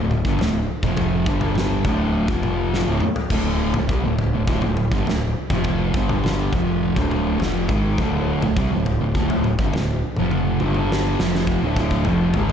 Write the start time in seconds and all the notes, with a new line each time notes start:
Already playing: D1 D2
0.00 A2
0.11 mid tom
0.25 G1 G2 D3, kick
0.39 D1 D2 A2, snare, floor tom
0.83 F1 F2 C3 F3, kick, mid tom
0.97 kick, floor tom
1.26 G1 G2 D3 G3, kick
1.41 floor tom, mid tom
1.55 snare, mid tom
1.85 D1 D2 A2 D3, kick, floor tom
2.28 F1 F2 C3 F3, kick, floor tom
2.43 mid tom
2.74 snare
2.87 D1 D2 A2
3.00 muted picked electric bass stroke, muted distorted electric guitar stroke, mid tom
3.16 floor tom
3.30 D1 D2 A2 D3, kick, floor tom, crash
3.74 D1 D2 A2, floor tom, mid tom
3.89 C2 C3 G3, kick
4.04 D1 D2 A2
4.19 floor tom
4.33 D1 D2 A2
4.47 D1 D2 A2, kick
4.62 D1 D2 A2, floor tom
4.77 mid tom
4.91 G1 G2 D3, kick
5.05 D1 D2 A2, snare, floor tom
5.50 F1 F2 C3 F3, kick, mid tom
5.64 kick, floor tom
5.94 G1 G2 D3 G3, kick
6.09 floor tom, mid tom
6.24 snare, mid tom
6.53 F1 F2 C3 F3, kick, floor tom
6.96 D1 D2 A2 D3, kick, floor tom
7.11 mid tom
7.39 F1 F2 C3 F3, snare, floor tom
7.69 G#1 G#2 D#3 G#3, kick
7.98 D1 D2 A2 D3, kick, floor tom
8.41 D1 D2 A2, floor tom, mid tom
8.57 C2 C3 G3, kick
8.72 D1 D2 A2
8.86 floor tom
9.01 D1 D2 A2
9.15 D1 D2 A2, kick
9.30 D1 D2 A2, floor tom
9.44 mid tom
9.59 G1 G2 D3, kick
9.74 D1 D2 A2, snare, floor tom
10.17 F1 F2 C3 F3, mid tom
10.31 high tom
10.60 G1 G2 D3 G3, high tom
10.75 high tom
10.92 snare
11.19 F1 F2 C3 F3, snare
11.35 snare
11.47 kick
11.61 D1 D2 A2 D3
11.76 kick
11.91 kick
12.05 F1 F2 C3 F3, floor tom
12.34 G#1 G#2 D#3 G#3, floor tom